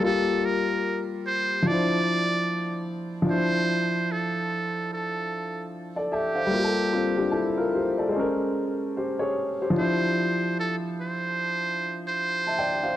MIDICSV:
0, 0, Header, 1, 3, 480
1, 0, Start_track
1, 0, Key_signature, -1, "minor"
1, 0, Tempo, 810811
1, 21, Time_signature, 4, 2, 24, 8
1, 7676, End_track
2, 0, Start_track
2, 0, Title_t, "Muted trumpet"
2, 0, Program_c, 0, 59
2, 27, Note_on_c, 0, 69, 93
2, 270, Note_on_c, 0, 70, 89
2, 278, Note_off_c, 0, 69, 0
2, 604, Note_off_c, 0, 70, 0
2, 748, Note_on_c, 0, 72, 94
2, 990, Note_on_c, 0, 74, 103
2, 999, Note_off_c, 0, 72, 0
2, 1706, Note_off_c, 0, 74, 0
2, 1957, Note_on_c, 0, 72, 104
2, 2438, Note_on_c, 0, 69, 80
2, 2447, Note_off_c, 0, 72, 0
2, 2910, Note_off_c, 0, 69, 0
2, 2919, Note_on_c, 0, 69, 73
2, 3366, Note_off_c, 0, 69, 0
2, 3631, Note_on_c, 0, 67, 110
2, 4562, Note_off_c, 0, 67, 0
2, 5796, Note_on_c, 0, 72, 91
2, 6245, Note_off_c, 0, 72, 0
2, 6273, Note_on_c, 0, 69, 77
2, 6368, Note_off_c, 0, 69, 0
2, 6520, Note_on_c, 0, 72, 93
2, 7114, Note_off_c, 0, 72, 0
2, 7146, Note_on_c, 0, 72, 94
2, 7676, Note_off_c, 0, 72, 0
2, 7676, End_track
3, 0, Start_track
3, 0, Title_t, "Upright piano"
3, 0, Program_c, 1, 0
3, 0, Control_c, 1, 64, 127
3, 0, Note_on_c, 1, 55, 68
3, 1, Note_on_c, 1, 58, 66
3, 22, Note_on_c, 1, 65, 62
3, 29, Control_c, 1, 64, 0
3, 45, Note_on_c, 1, 67, 78
3, 143, Control_c, 1, 64, 127
3, 940, Note_off_c, 1, 55, 0
3, 952, Note_off_c, 1, 58, 0
3, 961, Note_on_c, 1, 53, 63
3, 963, Note_off_c, 1, 65, 0
3, 974, Note_off_c, 1, 67, 0
3, 983, Note_on_c, 1, 62, 58
3, 988, Control_c, 1, 64, 0
3, 1005, Note_on_c, 1, 64, 59
3, 1028, Note_on_c, 1, 72, 66
3, 1105, Control_c, 1, 64, 127
3, 1898, Note_off_c, 1, 53, 0
3, 1907, Note_on_c, 1, 53, 70
3, 1921, Note_off_c, 1, 62, 0
3, 1930, Note_on_c, 1, 62, 64
3, 1934, Note_off_c, 1, 64, 0
3, 1946, Note_off_c, 1, 72, 0
3, 1948, Control_c, 1, 64, 0
3, 1951, Note_on_c, 1, 64, 61
3, 1974, Note_on_c, 1, 72, 77
3, 2067, Control_c, 1, 64, 127
3, 3134, Note_off_c, 1, 72, 0
3, 3530, Note_on_c, 1, 74, 55
3, 3534, Note_on_c, 1, 69, 43
3, 3618, Note_off_c, 1, 74, 0
3, 3619, Note_off_c, 1, 69, 0
3, 3623, Note_on_c, 1, 76, 64
3, 3628, Note_on_c, 1, 69, 56
3, 3761, Note_on_c, 1, 77, 57
3, 3762, Note_off_c, 1, 76, 0
3, 3764, Note_on_c, 1, 72, 49
3, 3765, Note_off_c, 1, 69, 0
3, 3820, Note_off_c, 1, 53, 0
3, 3828, Note_on_c, 1, 55, 72
3, 3832, Note_off_c, 1, 62, 0
3, 3842, Note_off_c, 1, 64, 0
3, 3851, Note_on_c, 1, 58, 64
3, 3870, Control_c, 1, 64, 0
3, 3871, Note_on_c, 1, 65, 68
3, 3895, Note_on_c, 1, 67, 65
3, 3925, Note_off_c, 1, 67, 0
3, 3933, Note_on_c, 1, 69, 74
3, 3984, Control_c, 1, 64, 127
3, 3992, Note_off_c, 1, 77, 0
3, 3994, Note_off_c, 1, 72, 0
3, 4094, Note_off_c, 1, 65, 0
3, 4103, Note_on_c, 1, 65, 59
3, 4107, Note_on_c, 1, 60, 45
3, 4133, Note_off_c, 1, 69, 0
3, 4242, Note_off_c, 1, 65, 0
3, 4244, Note_off_c, 1, 60, 0
3, 4245, Note_on_c, 1, 67, 58
3, 4248, Note_on_c, 1, 62, 49
3, 4331, Note_on_c, 1, 69, 62
3, 4335, Note_off_c, 1, 67, 0
3, 4335, Note_on_c, 1, 64, 54
3, 4337, Note_off_c, 1, 62, 0
3, 4476, Note_off_c, 1, 69, 0
3, 4478, Note_off_c, 1, 64, 0
3, 4484, Note_on_c, 1, 70, 59
3, 4488, Note_on_c, 1, 65, 50
3, 4574, Note_off_c, 1, 70, 0
3, 4577, Note_off_c, 1, 65, 0
3, 4585, Note_on_c, 1, 72, 62
3, 4589, Note_on_c, 1, 67, 48
3, 4723, Note_off_c, 1, 72, 0
3, 4725, Note_off_c, 1, 67, 0
3, 4725, Note_on_c, 1, 74, 51
3, 4730, Note_on_c, 1, 69, 49
3, 4785, Note_off_c, 1, 55, 0
3, 4786, Note_on_c, 1, 56, 69
3, 4797, Note_off_c, 1, 58, 0
3, 4807, Note_on_c, 1, 72, 63
3, 4830, Control_c, 1, 64, 0
3, 4830, Note_on_c, 1, 61, 56
3, 4852, Note_on_c, 1, 70, 70
3, 4922, Control_c, 1, 64, 127
3, 4955, Note_off_c, 1, 74, 0
3, 4957, Note_off_c, 1, 69, 0
3, 5302, Note_off_c, 1, 72, 0
3, 5307, Note_off_c, 1, 70, 0
3, 5311, Note_on_c, 1, 72, 57
3, 5315, Note_on_c, 1, 67, 45
3, 5442, Note_on_c, 1, 73, 65
3, 5446, Note_off_c, 1, 72, 0
3, 5447, Note_on_c, 1, 68, 57
3, 5448, Note_off_c, 1, 67, 0
3, 5673, Note_off_c, 1, 73, 0
3, 5676, Note_off_c, 1, 68, 0
3, 5694, Note_on_c, 1, 72, 62
3, 5697, Note_on_c, 1, 67, 53
3, 5743, Note_on_c, 1, 53, 72
3, 5744, Note_off_c, 1, 56, 0
3, 5765, Note_on_c, 1, 62, 54
3, 5766, Note_off_c, 1, 61, 0
3, 5787, Note_on_c, 1, 64, 65
3, 5789, Control_c, 1, 64, 0
3, 5800, Note_off_c, 1, 72, 0
3, 5809, Note_on_c, 1, 72, 81
3, 5901, Control_c, 1, 64, 127
3, 5921, Note_off_c, 1, 67, 0
3, 6971, Note_off_c, 1, 72, 0
3, 7381, Note_on_c, 1, 81, 58
3, 7385, Note_on_c, 1, 76, 56
3, 7449, Note_on_c, 1, 79, 69
3, 7454, Note_on_c, 1, 74, 57
3, 7463, Note_off_c, 1, 81, 0
3, 7465, Note_off_c, 1, 76, 0
3, 7595, Note_off_c, 1, 79, 0
3, 7597, Note_off_c, 1, 74, 0
3, 7597, Note_on_c, 1, 77, 60
3, 7598, Note_on_c, 1, 72, 59
3, 7659, Note_off_c, 1, 53, 0
3, 7670, Note_off_c, 1, 62, 0
3, 7676, Note_off_c, 1, 64, 0
3, 7676, Note_off_c, 1, 72, 0
3, 7676, Note_off_c, 1, 77, 0
3, 7676, End_track
0, 0, End_of_file